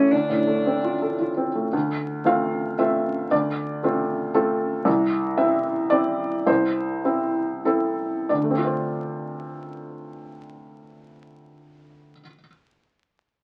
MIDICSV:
0, 0, Header, 1, 3, 480
1, 0, Start_track
1, 0, Key_signature, -1, "minor"
1, 0, Tempo, 539568
1, 104, Time_signature, 3, 2, 24, 8
1, 1543, Tempo, 520382
1, 4903, Tempo, 554529
1, 6343, Tempo, 604230
1, 6823, Tempo, 649351
1, 11102, End_track
2, 0, Start_track
2, 0, Title_t, "Cello"
2, 0, Program_c, 0, 42
2, 0, Note_on_c, 0, 61, 68
2, 96, Note_on_c, 0, 62, 55
2, 109, Note_off_c, 0, 61, 0
2, 1063, Note_off_c, 0, 62, 0
2, 11102, End_track
3, 0, Start_track
3, 0, Title_t, "Felt piano"
3, 0, Program_c, 1, 0
3, 0, Control_c, 1, 64, 127
3, 0, Note_on_c, 1, 33, 54
3, 0, Note_on_c, 1, 40, 39
3, 0, Note_on_c, 1, 57, 31
3, 0, Note_on_c, 1, 61, 32
3, 0, Note_on_c, 1, 64, 37
3, 0, Note_on_c, 1, 69, 41
3, 99, Note_on_c, 1, 38, 38
3, 104, Note_off_c, 1, 57, 0
3, 121, Control_c, 1, 64, 0
3, 123, Note_off_c, 1, 40, 0
3, 124, Note_off_c, 1, 33, 0
3, 128, Note_off_c, 1, 69, 0
3, 130, Note_off_c, 1, 61, 0
3, 130, Note_off_c, 1, 64, 0
3, 248, Control_c, 1, 64, 127
3, 263, Note_on_c, 1, 45, 27
3, 421, Note_on_c, 1, 57, 31
3, 522, Note_off_c, 1, 45, 0
3, 590, Note_on_c, 1, 60, 31
3, 682, Note_off_c, 1, 57, 0
3, 746, Note_on_c, 1, 65, 29
3, 846, Note_off_c, 1, 60, 0
3, 907, Note_on_c, 1, 69, 26
3, 1003, Note_off_c, 1, 65, 0
3, 1067, Note_on_c, 1, 65, 27
3, 1162, Note_off_c, 1, 69, 0
3, 1221, Note_on_c, 1, 60, 26
3, 1322, Note_off_c, 1, 65, 0
3, 1379, Note_on_c, 1, 57, 24
3, 1478, Note_off_c, 1, 60, 0
3, 1506, Note_off_c, 1, 38, 0
3, 1538, Note_on_c, 1, 38, 41
3, 1540, Note_off_c, 1, 57, 0
3, 1562, Control_c, 1, 64, 0
3, 1689, Control_c, 1, 64, 127
3, 2010, Note_off_c, 1, 38, 0
3, 2014, Note_on_c, 1, 57, 31
3, 2020, Note_on_c, 1, 60, 33
3, 2025, Note_on_c, 1, 65, 36
3, 2031, Note_on_c, 1, 77, 56
3, 2469, Note_off_c, 1, 57, 0
3, 2472, Note_off_c, 1, 60, 0
3, 2475, Note_off_c, 1, 65, 0
3, 2481, Note_off_c, 1, 77, 0
3, 2513, Note_on_c, 1, 76, 58
3, 2514, Note_on_c, 1, 57, 27
3, 2516, Note_on_c, 1, 60, 29
3, 2516, Note_on_c, 1, 65, 33
3, 2959, Note_off_c, 1, 57, 0
3, 2960, Note_off_c, 1, 60, 0
3, 2960, Note_off_c, 1, 65, 0
3, 2962, Note_off_c, 1, 76, 0
3, 2994, Note_on_c, 1, 38, 42
3, 2998, Note_on_c, 1, 74, 56
3, 3011, Control_c, 1, 64, 0
3, 3160, Control_c, 1, 64, 127
3, 3459, Note_off_c, 1, 38, 0
3, 3477, Note_on_c, 1, 57, 36
3, 3483, Note_on_c, 1, 60, 34
3, 3484, Note_on_c, 1, 65, 37
3, 3912, Note_off_c, 1, 74, 0
3, 3913, Note_off_c, 1, 57, 0
3, 3916, Note_off_c, 1, 60, 0
3, 3916, Note_off_c, 1, 65, 0
3, 3949, Note_on_c, 1, 69, 52
3, 3950, Note_on_c, 1, 57, 34
3, 3952, Note_on_c, 1, 60, 32
3, 3953, Note_on_c, 1, 65, 35
3, 4386, Note_off_c, 1, 57, 0
3, 4387, Note_off_c, 1, 60, 0
3, 4387, Note_off_c, 1, 65, 0
3, 4389, Note_off_c, 1, 69, 0
3, 4418, Note_on_c, 1, 36, 45
3, 4439, Control_c, 1, 64, 0
3, 4592, Control_c, 1, 64, 127
3, 4887, Note_off_c, 1, 36, 0
3, 4900, Note_on_c, 1, 60, 37
3, 4900, Note_on_c, 1, 76, 59
3, 4908, Note_on_c, 1, 64, 37
3, 5330, Note_off_c, 1, 60, 0
3, 5333, Note_off_c, 1, 76, 0
3, 5334, Note_off_c, 1, 64, 0
3, 5355, Note_on_c, 1, 74, 60
3, 5372, Note_on_c, 1, 60, 30
3, 5376, Note_on_c, 1, 64, 36
3, 5806, Note_off_c, 1, 74, 0
3, 5814, Note_off_c, 1, 60, 0
3, 5816, Note_off_c, 1, 64, 0
3, 5845, Note_on_c, 1, 36, 40
3, 5847, Note_on_c, 1, 72, 54
3, 5863, Control_c, 1, 64, 0
3, 5991, Control_c, 1, 64, 127
3, 6328, Note_off_c, 1, 36, 0
3, 6349, Note_on_c, 1, 60, 32
3, 6351, Note_on_c, 1, 64, 37
3, 6792, Note_off_c, 1, 72, 0
3, 6794, Note_off_c, 1, 60, 0
3, 6795, Note_off_c, 1, 64, 0
3, 6828, Note_on_c, 1, 69, 41
3, 6831, Note_on_c, 1, 60, 28
3, 6834, Note_on_c, 1, 64, 30
3, 7273, Note_off_c, 1, 69, 0
3, 7275, Note_off_c, 1, 60, 0
3, 7277, Note_off_c, 1, 64, 0
3, 7302, Note_on_c, 1, 74, 37
3, 7303, Note_on_c, 1, 38, 28
3, 7319, Control_c, 1, 64, 0
3, 7356, Note_on_c, 1, 50, 31
3, 7408, Note_on_c, 1, 57, 29
3, 7457, Note_on_c, 1, 60, 29
3, 7474, Control_c, 1, 64, 127
3, 7509, Note_on_c, 1, 65, 29
3, 7564, Note_on_c, 1, 72, 30
3, 10127, Note_off_c, 1, 74, 0
3, 10129, Note_off_c, 1, 38, 0
3, 10181, Note_off_c, 1, 50, 0
3, 10202, Control_c, 1, 64, 0
3, 10233, Note_off_c, 1, 57, 0
3, 10283, Note_off_c, 1, 60, 0
3, 10335, Note_off_c, 1, 65, 0
3, 10389, Note_off_c, 1, 72, 0
3, 11102, End_track
0, 0, End_of_file